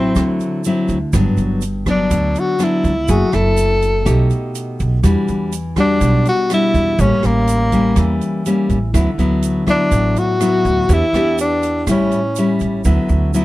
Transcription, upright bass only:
0, 0, Header, 1, 2, 480
1, 0, Start_track
1, 0, Key_signature, 2, "major"
1, 0, Tempo, 488202
1, 1115, Time_signature, 4, 2, 24, 8
1, 13223, End_track
2, 0, Start_track
2, 0, Title_t, "Upright bass"
2, 0, Program_c, 0, 32
2, 0, Note_on_c, 0, 33, 77
2, 115, Note_off_c, 0, 33, 0
2, 155, Note_on_c, 0, 38, 84
2, 378, Note_off_c, 0, 38, 0
2, 877, Note_on_c, 0, 38, 78
2, 1099, Note_off_c, 0, 38, 0
2, 1112, Note_on_c, 0, 31, 98
2, 1225, Note_off_c, 0, 31, 0
2, 1351, Note_on_c, 0, 31, 78
2, 2033, Note_off_c, 0, 31, 0
2, 2071, Note_on_c, 0, 38, 88
2, 2296, Note_off_c, 0, 38, 0
2, 2792, Note_on_c, 0, 37, 79
2, 3016, Note_off_c, 0, 37, 0
2, 3035, Note_on_c, 0, 30, 98
2, 3146, Note_off_c, 0, 30, 0
2, 3279, Note_on_c, 0, 30, 80
2, 3957, Note_off_c, 0, 30, 0
2, 3993, Note_on_c, 0, 35, 82
2, 4216, Note_off_c, 0, 35, 0
2, 4719, Note_on_c, 0, 35, 83
2, 4939, Note_off_c, 0, 35, 0
2, 4951, Note_on_c, 0, 40, 97
2, 5063, Note_off_c, 0, 40, 0
2, 5199, Note_on_c, 0, 40, 77
2, 5877, Note_off_c, 0, 40, 0
2, 5908, Note_on_c, 0, 35, 84
2, 6133, Note_off_c, 0, 35, 0
2, 6630, Note_on_c, 0, 40, 79
2, 6855, Note_off_c, 0, 40, 0
2, 6869, Note_on_c, 0, 33, 103
2, 6983, Note_off_c, 0, 33, 0
2, 7110, Note_on_c, 0, 33, 74
2, 7792, Note_off_c, 0, 33, 0
2, 7830, Note_on_c, 0, 40, 88
2, 8055, Note_off_c, 0, 40, 0
2, 8552, Note_on_c, 0, 33, 75
2, 8776, Note_off_c, 0, 33, 0
2, 8789, Note_on_c, 0, 38, 100
2, 8903, Note_off_c, 0, 38, 0
2, 9025, Note_on_c, 0, 38, 76
2, 9711, Note_off_c, 0, 38, 0
2, 9750, Note_on_c, 0, 33, 90
2, 9975, Note_off_c, 0, 33, 0
2, 10473, Note_on_c, 0, 38, 76
2, 10697, Note_off_c, 0, 38, 0
2, 10709, Note_on_c, 0, 40, 101
2, 10823, Note_off_c, 0, 40, 0
2, 10943, Note_on_c, 0, 40, 80
2, 11630, Note_off_c, 0, 40, 0
2, 11674, Note_on_c, 0, 33, 82
2, 11898, Note_off_c, 0, 33, 0
2, 12396, Note_on_c, 0, 33, 70
2, 12620, Note_off_c, 0, 33, 0
2, 12632, Note_on_c, 0, 38, 93
2, 12746, Note_off_c, 0, 38, 0
2, 12872, Note_on_c, 0, 38, 84
2, 13223, Note_off_c, 0, 38, 0
2, 13223, End_track
0, 0, End_of_file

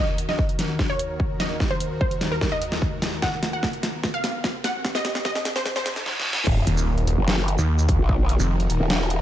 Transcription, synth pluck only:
0, 0, Header, 1, 2, 480
1, 0, Start_track
1, 0, Tempo, 405405
1, 1898, Time_signature, 4, 2, 24, 8
1, 10912, End_track
2, 0, Start_track
2, 0, Title_t, "Synth pluck"
2, 0, Program_c, 0, 84
2, 0, Note_on_c, 0, 75, 92
2, 262, Note_off_c, 0, 75, 0
2, 340, Note_on_c, 0, 75, 94
2, 623, Note_off_c, 0, 75, 0
2, 1061, Note_on_c, 0, 73, 94
2, 1343, Note_off_c, 0, 73, 0
2, 1657, Note_on_c, 0, 75, 90
2, 1942, Note_off_c, 0, 75, 0
2, 2019, Note_on_c, 0, 72, 95
2, 2303, Note_off_c, 0, 72, 0
2, 2377, Note_on_c, 0, 72, 87
2, 2662, Note_off_c, 0, 72, 0
2, 2743, Note_on_c, 0, 70, 93
2, 2929, Note_off_c, 0, 70, 0
2, 2982, Note_on_c, 0, 75, 96
2, 3264, Note_off_c, 0, 75, 0
2, 3818, Note_on_c, 0, 78, 96
2, 4102, Note_off_c, 0, 78, 0
2, 4183, Note_on_c, 0, 78, 94
2, 4464, Note_off_c, 0, 78, 0
2, 4901, Note_on_c, 0, 77, 95
2, 5183, Note_off_c, 0, 77, 0
2, 5499, Note_on_c, 0, 78, 98
2, 5783, Note_off_c, 0, 78, 0
2, 5864, Note_on_c, 0, 75, 100
2, 6145, Note_off_c, 0, 75, 0
2, 6219, Note_on_c, 0, 75, 93
2, 6503, Note_off_c, 0, 75, 0
2, 6583, Note_on_c, 0, 72, 92
2, 6770, Note_off_c, 0, 72, 0
2, 6822, Note_on_c, 0, 72, 97
2, 7104, Note_off_c, 0, 72, 0
2, 10912, End_track
0, 0, End_of_file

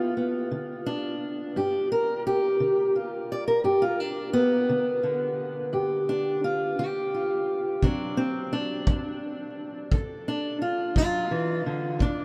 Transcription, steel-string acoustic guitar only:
0, 0, Header, 1, 2, 480
1, 0, Start_track
1, 0, Tempo, 696056
1, 2516, Time_signature, 12, 3, 24, 8
1, 8446, End_track
2, 0, Start_track
2, 0, Title_t, "Steel-string acoustic guitar"
2, 0, Program_c, 0, 25
2, 0, Note_on_c, 0, 59, 46
2, 0, Note_on_c, 0, 65, 97
2, 114, Note_off_c, 0, 59, 0
2, 117, Note_on_c, 0, 59, 44
2, 119, Note_off_c, 0, 65, 0
2, 355, Note_on_c, 0, 50, 64
2, 596, Note_on_c, 0, 62, 94
2, 787, Note_off_c, 0, 50, 0
2, 1075, Note_off_c, 0, 62, 0
2, 1077, Note_on_c, 0, 43, 75
2, 1082, Note_on_c, 0, 67, 78
2, 1319, Note_off_c, 0, 67, 0
2, 1322, Note_on_c, 0, 70, 82
2, 1508, Note_off_c, 0, 43, 0
2, 1559, Note_off_c, 0, 70, 0
2, 1563, Note_on_c, 0, 67, 97
2, 1794, Note_on_c, 0, 50, 67
2, 2038, Note_on_c, 0, 65, 46
2, 2039, Note_off_c, 0, 67, 0
2, 2227, Note_off_c, 0, 50, 0
2, 2288, Note_on_c, 0, 74, 97
2, 2394, Note_off_c, 0, 74, 0
2, 2397, Note_on_c, 0, 70, 89
2, 2488, Note_off_c, 0, 59, 0
2, 2488, Note_off_c, 0, 65, 0
2, 2510, Note_off_c, 0, 70, 0
2, 2510, Note_on_c, 0, 43, 78
2, 2513, Note_on_c, 0, 67, 76
2, 2633, Note_on_c, 0, 65, 90
2, 2634, Note_off_c, 0, 67, 0
2, 2758, Note_off_c, 0, 65, 0
2, 2758, Note_on_c, 0, 62, 92
2, 2945, Note_off_c, 0, 43, 0
2, 2986, Note_off_c, 0, 62, 0
2, 2989, Note_on_c, 0, 59, 101
2, 3236, Note_on_c, 0, 50, 67
2, 3463, Note_off_c, 0, 50, 0
2, 3471, Note_on_c, 0, 50, 44
2, 3949, Note_on_c, 0, 43, 73
2, 3952, Note_off_c, 0, 59, 0
2, 3953, Note_on_c, 0, 67, 50
2, 4199, Note_on_c, 0, 62, 93
2, 4385, Note_off_c, 0, 43, 0
2, 4438, Note_off_c, 0, 62, 0
2, 4442, Note_on_c, 0, 65, 85
2, 4674, Note_off_c, 0, 50, 0
2, 4674, Note_off_c, 0, 67, 0
2, 4679, Note_off_c, 0, 65, 0
2, 4681, Note_on_c, 0, 50, 66
2, 4683, Note_on_c, 0, 67, 87
2, 4927, Note_on_c, 0, 65, 48
2, 5111, Note_off_c, 0, 50, 0
2, 5372, Note_off_c, 0, 65, 0
2, 5396, Note_on_c, 0, 50, 73
2, 5398, Note_off_c, 0, 67, 0
2, 5402, Note_on_c, 0, 54, 50
2, 5403, Note_on_c, 0, 62, 86
2, 5404, Note_on_c, 0, 60, 47
2, 5633, Note_off_c, 0, 60, 0
2, 5636, Note_on_c, 0, 60, 87
2, 5639, Note_off_c, 0, 62, 0
2, 5828, Note_off_c, 0, 50, 0
2, 5875, Note_off_c, 0, 60, 0
2, 5880, Note_on_c, 0, 62, 95
2, 6109, Note_off_c, 0, 54, 0
2, 6117, Note_on_c, 0, 54, 66
2, 6548, Note_off_c, 0, 54, 0
2, 6837, Note_off_c, 0, 62, 0
2, 6838, Note_on_c, 0, 50, 73
2, 6846, Note_on_c, 0, 69, 52
2, 7089, Note_on_c, 0, 62, 91
2, 7268, Note_off_c, 0, 50, 0
2, 7318, Note_off_c, 0, 62, 0
2, 7321, Note_on_c, 0, 65, 82
2, 7557, Note_off_c, 0, 65, 0
2, 7564, Note_on_c, 0, 54, 66
2, 7568, Note_on_c, 0, 65, 93
2, 7797, Note_off_c, 0, 54, 0
2, 7800, Note_on_c, 0, 52, 65
2, 8036, Note_off_c, 0, 52, 0
2, 8042, Note_on_c, 0, 50, 63
2, 8249, Note_off_c, 0, 69, 0
2, 8270, Note_on_c, 0, 48, 73
2, 8277, Note_off_c, 0, 50, 0
2, 8280, Note_off_c, 0, 65, 0
2, 8288, Note_on_c, 0, 62, 91
2, 8446, Note_off_c, 0, 48, 0
2, 8446, Note_off_c, 0, 62, 0
2, 8446, End_track
0, 0, End_of_file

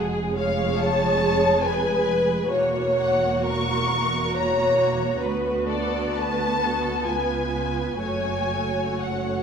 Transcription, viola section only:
0, 0, Header, 1, 2, 480
1, 0, Start_track
1, 0, Tempo, 851064
1, 1415, Tempo, 952381
1, 1416, Time_signature, 3, 2, 24, 8
1, 1895, Tempo, 874636
1, 2855, Tempo, 938967
1, 4295, Tempo, 988468
1, 4976, End_track
2, 0, Start_track
2, 0, Title_t, "Viola section"
2, 0, Program_c, 0, 48
2, 0, Note_on_c, 0, 56, 51
2, 0, Note_on_c, 0, 68, 50
2, 1393, Note_off_c, 0, 56, 0
2, 1394, Note_off_c, 0, 68, 0
2, 1413, Note_on_c, 0, 58, 45
2, 1413, Note_on_c, 0, 66, 48
2, 2831, Note_off_c, 0, 58, 0
2, 2859, Note_on_c, 0, 59, 46
2, 3788, Note_off_c, 0, 66, 0
2, 3810, Note_on_c, 0, 65, 37
2, 4290, Note_on_c, 0, 57, 35
2, 4290, Note_on_c, 0, 66, 35
2, 4294, Note_off_c, 0, 65, 0
2, 4296, Note_off_c, 0, 59, 0
2, 4976, Note_off_c, 0, 57, 0
2, 4976, Note_off_c, 0, 66, 0
2, 4976, End_track
0, 0, End_of_file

